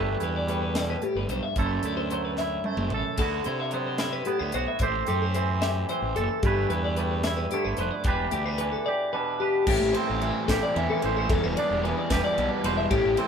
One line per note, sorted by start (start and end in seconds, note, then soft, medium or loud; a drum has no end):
0.00 0.15 G1 loud
0.00 1.01 G2 medium
0.00 0.73 E3 medium
0.00 0.48 A3 medium
0.00 0.20 E4 medium
0.00 0.22 A4 medium
0.00 1.53 B4 medium
0.20 0.95 E2 medium
0.20 1.58 E4 medium
0.20 0.35 B4 medium
0.20 closed hi-hat medium
0.36 0.49 D5 medium
0.47 1.53 G3 medium
0.47 1.58 A3 soft
0.47 0.61 B4 medium
0.47 closed hi-hat medium
0.62 0.76 B4 medium
0.74 1.01 B2 medium
0.74 0.89 D5 medium
0.74 snare loud
0.74 closed hi-hat medium
0.90 1.03 B4 medium
1.01 1.29 A2 medium
1.01 1.16 G4 medium
1.01 closed hi-hat medium
1.15 1.26 G1 medium
1.15 1.29 B4 medium
1.28 1.39 B1 medium
1.28 1.57 G2 medium
1.28 1.43 C5 medium
1.28 closed hi-hat medium
1.43 1.57 E5 medium
1.56 1.78 F#1 loud
1.56 2.64 F#2 medium
1.56 2.12 A3 medium
1.56 1.85 E4 medium
1.56 2.94 A4 medium
1.56 1.85 C5 medium
1.56 kick loud
1.56 closed hi-hat medium
1.83 2.58 D2 medium
1.83 2.40 E4 medium
1.83 1.97 A4 medium
1.83 closed hi-hat medium
1.97 2.10 C5 medium
2.10 3.16 F#3 medium
2.10 2.65 A3 soft
2.10 2.24 C5 medium
2.10 closed hi-hat medium
2.25 2.38 B4 medium
2.37 3.21 E4 medium
2.37 2.65 E5 medium
2.37 snare medium
2.64 3.16 F#2 medium
2.64 3.20 A3 medium
2.64 2.92 C5 medium
2.64 high tom medium
2.77 2.88 F#1 medium
2.77 mid tom medium
2.90 3.02 A1 medium
2.90 3.18 A4 medium
2.90 mid tom medium
2.94 3.21 A4 medium
3.18 3.40 D2 medium
3.18 4.79 D3 medium
3.18 3.72 B3 medium
3.18 3.46 E4 medium
3.18 3.46 A4 medium
3.18 kick medium
3.18 closed hi-hat medium
3.18 crash medium
3.22 4.54 F#4 medium
3.44 4.21 C3 medium
3.44 3.99 E4 medium
3.44 3.60 C5 medium
3.44 closed hi-hat medium
3.60 3.73 E5 medium
3.71 4.78 F#3 medium
3.71 4.26 B3 medium
3.71 3.85 C5 medium
3.71 closed hi-hat medium
3.86 3.99 C5 medium
3.98 4.83 E4 medium
3.98 4.13 E5 medium
3.98 snare loud
3.98 closed hi-hat medium
4.13 4.26 B4 medium
4.25 4.78 A2 medium
4.25 4.78 B3 medium
4.25 4.39 G4 medium
4.25 closed hi-hat medium
4.39 4.51 D2 medium
4.39 4.54 B4 medium
4.52 4.65 B1 medium
4.52 4.82 F#4 medium
4.52 4.68 C5 medium
4.52 closed hi-hat medium
4.68 4.81 E5 medium
4.79 5.02 A1 loud
4.79 6.40 A2 medium
4.79 5.35 C4 medium
4.79 5.07 G4 medium
4.79 5.08 C5 medium
4.79 kick medium
4.79 closed hi-hat medium
4.83 6.17 C5 medium
5.06 5.83 F#2 medium
5.06 5.62 G4 medium
5.06 5.22 A4 medium
5.06 closed hi-hat medium
5.22 5.34 C5 medium
5.34 5.89 E3 medium
5.34 5.89 C4 medium
5.34 5.49 C5 medium
5.34 closed hi-hat medium
5.49 5.62 B4 medium
5.62 6.46 G4 medium
5.62 5.89 E5 medium
5.62 snare medium
5.62 closed hi-hat medium
5.89 7.52 E3 medium
5.89 6.41 C4 medium
5.89 6.17 C5 medium
5.89 closed hi-hat medium
6.02 6.13 A1 medium
6.16 6.27 F#1 medium
6.16 6.43 A4 medium
6.16 6.41 A4 medium
6.16 closed hi-hat medium
6.43 6.64 G1 loud
6.43 8.03 G2 medium
6.43 6.97 A3 medium
6.43 6.71 E4 medium
6.43 6.71 G4 medium
6.43 7.79 B4 medium
6.43 kick loud
6.43 closed hi-hat medium
6.70 7.45 E2 medium
6.70 7.27 E4 medium
6.70 6.84 B4 medium
6.70 closed hi-hat medium
6.84 6.97 D5 medium
6.96 8.61 G3 medium
6.96 7.52 A3 medium
6.96 7.10 B4 medium
6.96 closed hi-hat medium
7.11 7.24 B4 medium
7.23 8.07 E4 medium
7.23 7.38 E5 medium
7.23 snare loud
7.23 closed hi-hat medium
7.37 7.51 B4 medium
7.51 8.03 D3 medium
7.51 8.06 A3 medium
7.51 7.65 G4 medium
7.51 closed hi-hat medium
7.65 7.76 G1 medium
7.65 7.79 B4 medium
7.77 7.89 F1 medium
7.77 8.04 B4 medium
7.77 7.91 C5 medium
7.77 closed hi-hat medium
7.91 8.05 D5 medium
8.04 8.26 E1 loud
8.04 9.68 E2 medium
8.04 8.60 D4 medium
8.04 8.33 G4 medium
8.04 8.32 B4 medium
8.04 kick loud
8.04 closed hi-hat medium
8.08 9.40 B4 medium
8.31 8.75 D2 medium
8.31 8.46 G4 medium
8.31 8.87 G4 medium
8.31 closed hi-hat medium
8.46 8.57 B4 medium
8.58 10.21 E3 medium
8.58 9.13 D4 medium
8.58 8.73 B4 medium
8.58 closed hi-hat medium
8.72 8.86 A4 medium
8.86 9.65 G4 medium
8.86 9.13 D5 medium
9.13 9.68 B2 medium
9.13 9.65 D4 medium
9.13 9.40 B4 medium
9.40 9.67 G4 medium
9.40 9.65 B4 medium
9.67 9.78 A1 loud
9.67 11.26 A2 medium
9.67 9.95 E3 medium
9.67 9.95 A3 medium
9.67 9.95 C4 medium
9.67 9.94 E4 loud
9.67 9.95 G4 loud
9.67 kick loud
9.67 crash loud
9.82 9.92 A1 medium
9.94 10.21 E3 medium
9.94 10.22 A3 medium
9.94 10.22 C4 medium
9.94 11.27 C4 medium
9.94 10.22 E4 medium
9.94 10.08 C5 medium
9.94 ride medium
10.08 10.30 A1 medium
10.08 10.21 A4 medium
10.21 10.49 E3 medium
10.21 10.77 E3 medium
10.21 10.48 A3 medium
10.21 10.48 C4 medium
10.21 10.47 E4 medium
10.21 10.48 G4 medium
10.21 ride medium
10.48 10.59 A1 medium
10.48 10.74 E3 medium
10.48 10.75 A3 medium
10.48 10.76 C4 medium
10.48 10.75 E4 medium
10.48 12.12 G4 medium
10.48 10.62 A4 medium
10.48 kick medium
10.48 snare loud
10.48 ride loud
10.63 10.76 D5 medium
10.75 10.87 E2 loud
10.75 11.02 E3 medium
10.75 11.62 E3 medium
10.75 11.02 A3 medium
10.75 11.01 C4 medium
10.75 11.01 E4 medium
10.75 10.89 E5 medium
10.75 ride medium
10.90 11.17 A4 medium
11.02 11.24 A1 medium
11.02 11.29 E3 medium
11.02 11.30 A3 medium
11.02 11.29 C4 medium
11.02 11.29 E4 medium
11.02 11.28 C5 medium
11.02 ride medium
11.17 11.30 C5 medium
11.29 11.40 E1 loud
11.29 12.91 E2 medium
11.29 11.57 E3 medium
11.29 11.57 G3 medium
11.29 11.57 B3 loud
11.29 11.57 E4 medium
11.29 11.44 A4 medium
11.29 kick loud
11.29 ride loud
11.44 11.54 E1 medium
11.44 11.57 B4 medium
11.57 11.84 E3 medium
11.57 11.85 G3 medium
11.57 11.84 B3 medium
11.57 12.89 D4 medium
11.57 11.84 E4 medium
11.57 11.83 D5 medium
11.57 ride medium
11.71 11.91 E1 medium
11.83 13.28 E3 medium
11.83 12.11 E3 medium
11.83 12.12 G3 medium
11.83 12.12 B3 medium
11.83 12.11 E4 medium
11.83 11.97 B4 medium
11.83 ride medium
11.97 12.10 D5 medium
12.10 12.21 E1 medium
12.10 12.37 E3 medium
12.10 12.38 G3 medium
12.10 12.38 B3 medium
12.10 12.38 E4 medium
12.10 12.89 G4 medium
12.10 12.24 B4 medium
12.10 kick medium
12.10 snare loud
12.10 ride loud
12.24 12.51 D5 medium
12.38 12.48 B1 loud
12.38 12.92 B2 medium
12.38 12.65 E3 medium
12.38 12.65 G3 medium
12.38 12.65 B3 medium
12.38 12.65 E4 medium
12.38 ride medium
12.51 12.63 B4 medium
12.64 12.85 E1 medium
12.64 12.91 E3 medium
12.64 12.92 G3 medium
12.64 12.92 B3 medium
12.64 12.92 E4 medium
12.64 12.77 B4 medium
12.64 12.88 C5 medium
12.64 ride medium
12.77 12.91 E5 medium
12.90 13.02 A1 loud
12.90 13.28 A2 medium
12.90 13.18 E3 medium
12.90 13.18 A3 medium
12.90 13.18 C4 medium
12.90 13.18 E4 medium
12.90 13.18 G4 medium
12.90 kick loud
12.90 ride medium
13.05 13.15 A1 medium
13.17 13.28 E3 medium
13.17 13.28 A3 medium
13.17 13.28 C4 medium
13.17 13.28 E4 medium
13.17 13.28 C5 medium
13.17 ride medium